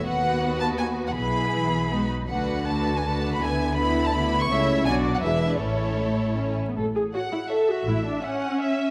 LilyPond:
<<
  \new Staff \with { instrumentName = "Violin section" } { \time 3/4 \key b \mixolydian \tempo 4 = 163 fis''4. a''8 gis''8. fis''16 | b''2~ b''8 r8 | \key a \major fis''4 a''8. gis''16 a''8. b''16 | gis''4 b''8. a''16 b''8. cis'''16 |
e''4 gis''8. fis''16 e''8. d''16 | cis''2~ cis''8 r8 | r4 cis''4 cis''4 | r4 e''4 e''4 | }
  \new Staff \with { instrumentName = "Violin section" } { \time 3/4 \key b \mixolydian <fis' b'>2. | <gis' b'>2 <fis' b'>8 r8 | \key a \major <fis' b'>4 <fis' b'>4 <fis' b'>4 | <e' b'>4 <e' b'>4 <e' b'>4 |
<e' cis''>4 <fis' d''>4 <e' b'>4 | <e' a'>2~ <e' a'>8 r8 | r4 fis''4 e''4~ | e''4 fis''4 e''4 | }
  \new Staff \with { instrumentName = "Viola section" } { \time 3/4 \key b \mixolydian <b fis'>2. | <b e'>2 <b dis'>8 r8 | \key a \major <a d'>4 <a d'>4 <a d'>4 | <b e'>4 <b e'>4 <b e'>4 |
<a e'>4 <fis d'>4 <gis d'>4 | <a cis'>4 a4 cis'8. b16 | a'8 gis'8 fis'8 e'8 a'8 fis'8 | e'8 d'8 cis'2 | }
  \new Staff \with { instrumentName = "Cello section" } { \clef bass \time 3/4 \key b \mixolydian dis,2. | b,4 e4 gis8. fis16 | \key a \major d2. | d2. |
cis4 b,4 e,4 | a,2~ a,8 r8 | a,4 r2 | a,4 r2 | }
  \new Staff \with { instrumentName = "Double bass section" } { \clef bass \time 3/4 \key b \mixolydian dis,2. | b,,2~ b,,8 r8 | \key a \major d,2. | d,2. |
cis,4 b,,4 e,,4 | a,,2~ a,,8 r8 | a,,4 r2 | a,,4 r2 | }
>>